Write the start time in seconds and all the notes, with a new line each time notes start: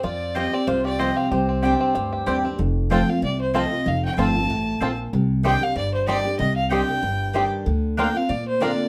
Already playing: C4 C5
0.03 F2 F3 F4 D5
0.35 F3 G3 C4 F4 G4 C5 D#5 G5
0.53 C4 G4 D5
0.67 C2 C3 F4 C5
0.85 G4 D5
0.99 F3 G3 C4 F4 G4 C5 D#5 G5
1.17 C4 F5
1.31 C2 C3 G4 C5
1.49 C4
1.62 G3 C4 D4 G4 D5 G5
1.80 C4
1.95 D2 G2 G4
2.13 G4
2.26 D#2 G3 C4 D4 G4 C5 D5 G5
2.44 C4 D4 G4
2.59 F1 F2
2.90 F3 A3 C4 F4 A4 C5 G5 A5
3.07 C4 F4 F5
3.22 C2 C3 D5
3.41 C5
3.54 F3 A3 C4 F4 A4 C5 D#5 A5
3.71 C4 F4
3.86 F1 F2 F5
4.05 G5
4.17 G1 F3 A3 C4 F4 A4 C5 A5
4.35 C4 F4
4.50 A1 A2
4.81 A#1 A#2 C4 F4 A4 C5 A5
5.13 C2 C3
5.43 D#3 G3 C4 D4 D#4 G4 D5 G5 C6
5.61 D4 G4 F5
5.76 G1 G2 D5
5.94 C5
6.07 D#3 G3 C4 D4 D#4 G4 D5 C6
6.25 D4 G4
6.39 C2 C3 D#5
6.56 F5
6.70 D#3 G3 C4 D4 D#4 G4 D5 G5 C6
6.88 D4 G4
7.03 G1 G2
7.33 D#3 G3 C4 D4 D#4 G4 D5 C6
7.66 D2 D3
7.97 D3 A#3 C4 D4 F4 A#4 F5 G5 C6
8.15 C4 F4 F5
8.29 A#2 A#3 D5
8.48 C5
8.60 D3 A#3 C4 D4 F4 A#4 D5 F5 C6